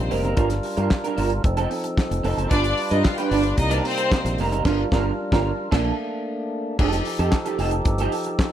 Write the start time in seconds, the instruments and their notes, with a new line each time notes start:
Already playing: tonewheel organ C3 G3 A#3 D#4
0.11 fingered electric bass F1, clean electric guitar C4 D#4 A#4, open hi-hat
0.23 fingered electric bass F#1, clean electric guitar C4 D#4 A#4, closed hi-hat
0.36 fingered electric bass G1, tonewheel organ G3 D4 F4 A#4, clean electric guitar D4 F4 A#4, kick, closed hi-hat
0.50 muted clean electric guitar stroke, snare, closed hi-hat
0.63 muted clean electric guitar stroke, open hi-hat
0.77 fingered electric bass G2, clean electric guitar D4 F4 A#4, closed hi-hat
0.90 muted clean electric guitar stroke, kick, snare, clap
1.04 clean electric guitar D4 F4 A#4, closed hi-hat
1.17 fingered electric bass G1, clean electric guitar D4 F4 A#4, open hi-hat
1.30 muted clean electric guitar stroke, closed hi-hat
1.44 fingered electric bass F1, tonewheel organ F3 C4 D#4 A4, muted clean electric guitar stroke, kick, closed hi-hat
1.57 clean electric guitar C4 D#4 A4, closed hi-hat
1.71 muted clean electric guitar stroke, open hi-hat
1.84 muted clean electric guitar stroke, closed hi-hat
1.97 muted clean electric guitar stroke, kick, snare, clap
2.11 fingered electric bass F1, muted clean electric guitar stroke, closed hi-hat
2.23 fingered electric bass F1, clean electric guitar C4 D#4 A4, open hi-hat
2.37 fingered electric bass F#1, clean electric guitar C4 D#4 A4, closed hi-hat
2.50 fingered electric bass G1, tonewheel organ G3 D4 F4 B4, string section D4 D5, clean electric guitar D4 F4 B4, kick, closed hi-hat
2.64 muted clean electric guitar stroke, closed hi-hat
2.77 muted clean electric guitar stroke, open hi-hat
2.90 fingered electric bass G2, clean electric guitar D4 F4 B4, string section D#4 D#5, closed hi-hat
3.04 string section F4 F5, muted clean electric guitar stroke, kick, snare, clap
3.18 clean electric guitar D4 F4 B4, string section G4 G5, closed hi-hat
3.30 fingered electric bass G1, string section D4 D5, clean electric guitar D4 F4 B4, open hi-hat
3.43 muted clean electric guitar stroke, closed hi-hat
3.58 fingered electric bass C2, tonewheel organ C3 A#3 D#4, string section D#4 D#5, muted clean electric guitar stroke, kick, closed hi-hat
3.71 clean electric guitar C4 D#4 A#4, string section D4 D5, closed hi-hat
3.84 string section C4 C5, muted clean electric guitar stroke, open hi-hat
3.98 muted clean electric guitar stroke, closed hi-hat
4.12 muted clean electric guitar stroke, kick, snare, clap
4.25 fingered electric bass A#1, muted clean electric guitar stroke, closed hi-hat
4.38 fingered electric bass F1, clean electric guitar C4 D#4 A#4, open hi-hat
4.52 fingered electric bass F#1, clean electric guitar C4 D#4 A#4, closed hi-hat
4.65 fingered electric bass G1, tonewheel organ D4 F4 A#4, clean electric guitar D4 F4 A#4, kick, snare, crash
4.92 fingered electric bass G1, clean electric guitar D4 F4 A#4, kick, snare
5.32 fingered electric bass G1, clean electric guitar D4 F4 A#4, kick, snare
5.71 fingered electric bass A#1, tonewheel organ A3 A#3 D4, clean electric guitar A#3 D4 A4, kick, snare, crash
6.79 fingered electric bass F1, tonewheel organ F3 D#4 G4 A4, clean electric guitar D#4 G4 A4, kick, crash
6.93 muted clean electric guitar stroke, snare, closed hi-hat
7.05 muted clean electric guitar stroke, open hi-hat
7.19 fingered electric bass F2, clean electric guitar D#4 G4 A4, closed hi-hat
7.32 muted clean electric guitar stroke, kick, snare, clap
7.45 clean electric guitar D#4 G4 A4, closed hi-hat
7.58 fingered electric bass F1, clean electric guitar D#4 G4 A4, open hi-hat
7.71 muted clean electric guitar stroke, closed hi-hat
7.85 fingered electric bass G1, muted clean electric guitar stroke, kick, closed hi-hat
7.98 clean electric guitar D#4 G4 A4, closed hi-hat
8.12 muted clean electric guitar stroke, open hi-hat
8.24 muted clean electric guitar stroke, closed hi-hat
8.39 muted clean electric guitar stroke, kick, snare, clap